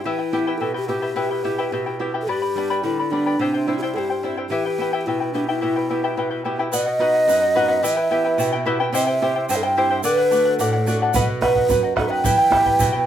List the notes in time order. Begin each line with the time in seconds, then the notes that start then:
0.05 E3 E4 G4 B4 E5 G5
0.19 E4 B4 G5
0.32 B3 E4 G4 B4 E5 G5
0.47 E4 G4 B4 E5 G5
0.58 B2 E4 A4 B4 E5 G5
0.74 E4 G4 B4 G5
0.88 B3 E4 G4 B4 E5 G5
1.02 E4 G4 B4 E5 G5
1.16 B2 E4 G4 B4 E5 G5
1.31 E4 B4 G5
1.44 B3 E4 G4 B4 E5 G5
1.58 E4 G4 B4 E5 G5
1.72 B2 E4 B4 E5 G5
1.86 E4 B4 G5
1.99 B3 E4 G4 B4 E5 G5
2.14 E4 G4 B4 E5 G5
2.22 A4
2.27 G2 G4 B4 D5 G5 B5
2.42 B4 D5 B5
2.55 G3 B3 D4 B4 D5 G5 B5
2.70 G4 B4 D5 G5 B5
2.83 D3 E4 B4 D5 G5 B5
3.00 B4 D5 B5
3.11 G3 B3 D4 B4 D5 G5 B5
3.26 G4 B4 D5 G5 B5
3.39 C3 E4 G4 C5 E5 G5
3.54 E4 C5 G5
3.67 G3 C4 E4 C5 E5 G5
3.78 E4 G4
3.82 E4 G4 C5 E5 G5
3.94 G2 E4 A4 C5 E5 G5
3.98 G4
4.10 E4 C5 G5
4.23 G3 C4 E4 C5 E5 G5
4.37 E4 G4 C5 E5 G5
4.49 E3 E4 G4 B4 E5 G5
4.65 E4 B4 G5
4.78 B3 E4 G4 B4 E5 G5
4.93 E4 G4 B4 E5 G5
5.01 G4
5.06 B2 E4 B4 E5 G5
5.20 E4 B4 G5
5.33 B3 D4 E4 G4 B4 E5 G5
5.48 E4 G4 B4 E5 G5
5.61 B2 E4 G4 B4 E5 G5
5.76 E4 B4 G5
5.90 B3 E4 G4 B4 E5 G5
6.04 E4 G4 B4 E5 G5
6.17 B2 E4 B4 E5 G5
6.31 E4 B4 G5
6.44 B3 E4 G4 B4 E5 G5
6.59 E4 G4 B4 E5 G5
6.72 B2 B4 D#5 F#5, shaker
6.86 D#5 F#5
6.99 B3 D#4 F#4 B4 D#5 F#5
7.14 D#5 F#5
7.28 F#2 B4 D#5 F#5, shaker
7.42 D#5 F#5
7.55 B3 D#4 F#4 B4 D#5 F#5
7.68 B4 D#5 F#5
7.83 E3 E4 G4 B4 D#5 E5 G5, shaker
7.94 B4 E5 G5
7.98 E4
8.10 B3 E4 G4 B4 E5 G5
8.25 E4 B4 G5
8.38 B2 E4 B4 E5 G5, shaker
8.53 E4 B4 G5
8.65 B3 E4 G4 B4 E5 G5
8.80 E4 G4 B4 E5 G5
8.93 C3 E4 G4 C5 E5 G5, shaker
9.07 E4 C5 G5
9.21 C4 E4 G4 C5 E5 G5
9.36 E4 C5 G5
9.49 G2 E4 C5 E5 G5, shaker
9.56 A4
9.63 E4 C5 G5
9.77 C4 E4 G4 C5 E5 G5
9.90 E4 G4 C5 E5 G5
10.03 D3 A4 B4 D5 F#5, shaker
10.18 D5 F#5
10.31 A3 D4 F#4 A4 D5 F#5, shaker
10.45 D5 F#5
10.59 A2 A4 B4 D5 F#5, shaker
10.73 D5 F#5
10.87 A3 D4 F#4 A4 D5 F#5, shaker
11.02 A4 D5 F#5
11.14 B2 B4 D#5 F#5, bombo low, shaker
11.29 F#5
11.41 B3 D#4 F#4 B4 D#5 F#5, bombo rim, bombo low
11.55 D#5 F#5, bombo low
11.69 F#2 B4 D#5 F#5, bombo low, shaker
11.83 D#5 F#5
11.96 B3 D#4 F#4 A4 B4 D#5 F#5, bombo rim, bombo low
12.10 B4 D#5 F#5 G5
12.24 E3 E4 G4 B4 E5 G5, bombo low, shaker
12.38 E4 B4 G5
12.50 B3 E4 G4 B4 E5 G5, bombo rim, bombo low
12.66 E4 B4 G5, bombo low
12.79 B2 E4 B4 E5 G5, bombo low, shaker
12.92 E4 B4 G5